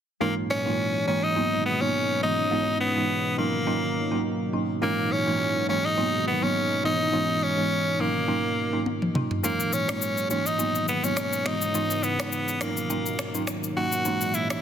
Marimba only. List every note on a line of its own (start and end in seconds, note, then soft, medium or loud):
0.21 0.38 G#2 medium
0.21 0.38 E3 medium
0.21 0.38 G#3 medium
0.21 0.38 A#3 medium
0.21 0.38 C#4 medium
0.21 0.38 D#4 loud
0.65 0.80 G#2 medium
0.65 0.80 E3 medium
0.65 0.80 G#3 medium
0.65 0.80 A#3 medium
0.65 0.80 C#4 medium
0.65 0.81 D#4 medium
1.07 1.25 G#2 medium
1.07 1.25 E3 medium
1.07 1.25 G#3 medium
1.07 1.25 A#3 medium
1.07 1.25 C#4 medium
1.07 1.25 D#4 medium
1.36 1.53 G#2 medium
1.36 1.54 F#3 medium
1.36 1.54 A#3 medium
1.36 1.54 B3 medium
1.36 1.54 D#4 loud
1.81 1.96 G#2 medium
1.81 1.96 F#3 medium
1.81 1.96 A#3 medium
1.81 1.96 B3 medium
1.81 1.96 D#4 medium
2.22 2.40 G#2 medium
2.22 2.40 E3 medium
2.22 2.40 G#3 medium
2.22 2.40 B3 medium
2.22 2.40 D#4 medium
2.51 2.69 G#2 medium
2.51 2.69 E3 medium
2.51 2.69 G#3 medium
2.51 2.69 B3 medium
2.51 2.69 D#4 loud
2.96 3.11 G#2 medium
2.96 3.11 E3 medium
2.96 3.11 G#3 medium
2.96 3.11 B3 medium
2.96 3.11 D#4 medium
3.38 3.55 G#2 medium
3.38 3.55 F#3 medium
3.38 3.55 A#3 medium
3.38 3.55 C#4 medium
3.38 3.56 D#4 medium
3.66 3.84 G#2 medium
3.66 3.84 F#3 medium
3.66 3.84 A#3 medium
3.66 3.84 C#4 medium
3.66 3.84 D#4 loud
4.11 4.26 G#2 medium
4.11 4.26 F#3 medium
4.11 4.26 A#3 medium
4.11 4.26 C#4 medium
4.11 4.26 D#4 medium
4.53 4.71 G#2 medium
4.53 4.71 F#3 medium
4.53 4.71 A#3 medium
4.53 4.71 C#4 medium
4.53 4.71 D#4 medium
4.82 4.99 G#2 medium
4.82 4.99 E3 medium
4.82 5.00 G#3 medium
4.82 5.00 A#3 medium
4.82 5.00 C#4 medium
4.82 5.00 D#4 loud
5.26 5.42 G#2 medium
5.26 5.42 E3 medium
5.26 5.42 G#3 medium
5.26 5.42 A#3 medium
5.26 5.42 C#4 medium
5.26 5.42 D#4 medium
5.69 5.86 G#2 medium
5.69 5.86 E3 medium
5.69 5.86 G#3 medium
5.69 5.86 A#3 medium
5.69 5.86 C#4 medium
5.69 5.86 D#4 medium
5.97 6.15 G#2 medium
5.97 6.15 F#3 medium
5.97 6.15 A#3 medium
5.97 6.15 B3 medium
5.97 6.15 D#4 loud
6.42 6.57 G#2 medium
6.42 6.57 F#3 medium
6.42 6.57 A#3 medium
6.42 6.57 B3 medium
6.42 6.57 D#4 medium
6.84 7.01 G#2 medium
6.84 7.02 E3 medium
6.84 7.02 G#3 medium
6.84 7.02 B3 medium
6.84 7.02 D#4 medium
7.13 7.30 G#2 medium
7.13 7.30 E3 medium
7.13 7.30 G#3 medium
7.13 7.31 B3 medium
7.13 7.31 D#4 loud
7.57 7.72 G#2 medium
7.57 7.72 E3 medium
7.57 7.73 G#3 medium
7.57 7.73 B3 medium
7.57 7.73 D#4 medium
7.99 8.17 G#2 medium
7.99 8.17 F#3 medium
7.99 8.17 A#3 medium
7.99 8.17 C#4 medium
7.99 8.17 D#4 medium
8.28 8.46 G#2 medium
8.28 8.46 F#3 medium
8.28 8.46 A#3 medium
8.28 8.46 C#4 medium
8.28 8.46 D#4 loud
8.73 8.88 G#2 medium
8.73 8.88 F#3 medium
8.73 8.88 A#3 medium
8.73 8.88 C#4 medium
8.73 8.88 D#4 medium
9.15 9.32 G#2 medium
9.15 9.32 F#3 medium
9.15 9.32 A#3 medium
9.15 9.32 C#4 medium
9.15 9.32 D#4 medium
9.43 9.61 G#2 medium
9.43 9.61 E3 medium
9.43 9.61 G#3 medium
9.43 9.61 A#3 medium
9.43 9.61 C#4 medium
9.43 9.61 D#4 loud
9.88 10.03 G#2 medium
9.88 10.03 E3 medium
9.88 10.03 G#3 medium
9.88 10.03 A#3 medium
9.88 10.03 C#4 medium
9.88 10.03 D#4 medium
10.30 10.48 G#2 medium
10.30 10.48 E3 medium
10.30 10.48 G#3 medium
10.30 10.48 A#3 medium
10.30 10.48 C#4 medium
10.30 10.48 D#4 medium
10.59 10.76 G#2 medium
10.59 10.76 F#3 medium
10.59 10.77 A#3 medium
10.59 10.77 B3 medium
10.59 10.77 D#4 loud
11.03 11.18 G#2 medium
11.03 11.19 F#3 medium
11.03 11.19 A#3 medium
11.03 11.19 B3 medium
11.03 11.19 D#4 medium
11.45 11.63 G#2 medium
11.45 11.63 E3 medium
11.45 11.63 G#3 medium
11.45 11.63 B3 medium
11.45 11.63 D#4 medium
11.74 11.92 G#2 medium
11.74 11.92 E3 medium
11.74 11.92 G#3 medium
11.74 11.92 B3 medium
11.74 11.92 D#4 loud
12.19 12.34 G#2 medium
12.19 12.34 E3 medium
12.19 12.34 G#3 medium
12.19 12.34 B3 medium
12.61 12.78 G#2 medium
12.61 12.79 F#3 medium
12.61 12.79 A#3 medium
12.61 12.79 C#4 medium
12.61 12.79 D#4 medium
12.90 13.07 G#2 medium
12.90 13.07 F#3 medium
12.90 13.07 A#3 medium
12.90 13.07 C#4 medium
12.90 13.07 D#4 loud
13.34 13.49 G#2 medium
13.34 13.49 F#3 medium
13.34 13.50 A#3 medium
13.34 13.50 C#4 medium
13.34 13.50 D#4 medium
13.76 13.94 G#2 medium
13.76 13.94 F#3 medium
13.76 13.94 A#3 medium
13.76 13.94 C#4 medium
13.76 13.94 D#4 medium
14.05 14.23 G#2 medium
14.05 14.23 E3 medium
14.05 14.23 G#3 medium
14.05 14.23 A#3 medium
14.05 14.23 C#4 medium
14.05 14.23 D#4 loud
14.50 14.62 G#2 medium
14.50 14.62 E3 medium
14.50 14.62 G#3 medium
14.50 14.62 A#3 medium
14.50 14.62 C#4 medium
14.50 14.62 D#4 medium